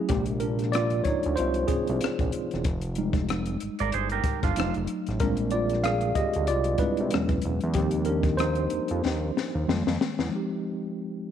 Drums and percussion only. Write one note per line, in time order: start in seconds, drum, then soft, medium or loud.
0.09 kick loud
0.09 closed hi-hat medium
0.26 closed hi-hat soft
0.40 closed hi-hat medium
0.59 cross-stick soft
0.59 closed hi-hat soft
0.73 cross-stick loud
0.73 closed hi-hat medium
0.90 closed hi-hat soft
1.04 kick medium
1.04 closed hi-hat medium
1.23 closed hi-hat soft
1.37 closed hi-hat medium
1.54 closed hi-hat soft
1.68 kick medium
1.68 closed hi-hat medium
1.87 closed hi-hat soft
2.01 cross-stick loud
2.01 closed hi-hat medium
2.19 kick medium
2.19 closed hi-hat soft
2.32 closed hi-hat medium
2.51 cross-stick soft
2.51 closed hi-hat soft
2.64 kick loud
2.64 closed hi-hat medium
2.81 closed hi-hat soft
2.95 closed hi-hat medium
3.13 kick loud
3.13 closed hi-hat soft
3.18 cross-stick soft
3.29 cross-stick loud
3.29 closed hi-hat medium
3.46 closed hi-hat soft
3.60 closed hi-hat medium
3.79 closed hi-hat soft
3.92 closed hi-hat medium
4.10 closed hi-hat soft
4.24 kick medium
4.24 closed hi-hat medium
4.43 kick medium
4.43 closed hi-hat soft
4.56 cross-stick loud
4.56 closed hi-hat medium
4.74 closed hi-hat soft
4.87 closed hi-hat medium
5.07 cross-stick soft
5.07 closed hi-hat soft
5.20 kick loud
5.20 closed hi-hat medium
5.37 closed hi-hat soft
5.51 closed hi-hat medium
5.70 cross-stick soft
5.70 closed hi-hat soft
5.84 cross-stick loud
5.84 closed hi-hat medium
6.01 closed hi-hat soft
6.15 kick medium
6.15 closed hi-hat medium
6.33 closed hi-hat soft
6.47 closed hi-hat medium
6.64 closed hi-hat soft
6.78 kick medium
6.78 closed hi-hat medium
6.97 closed hi-hat soft
7.11 cross-stick loud
7.11 closed hi-hat medium
7.29 kick medium
7.29 closed hi-hat soft
7.42 closed hi-hat medium
7.61 closed hi-hat soft
7.74 kick loud
7.74 closed hi-hat medium
7.91 closed hi-hat soft
8.05 closed hi-hat medium
8.23 kick medium
8.23 closed hi-hat soft
8.28 cross-stick soft
8.38 cross-stick loud
8.38 closed hi-hat medium
8.55 closed hi-hat soft
8.70 closed hi-hat medium
8.88 closed hi-hat soft
9.05 snare medium
9.37 snare medium
9.69 snare medium
9.87 snare medium
10.01 snare loud
10.19 snare medium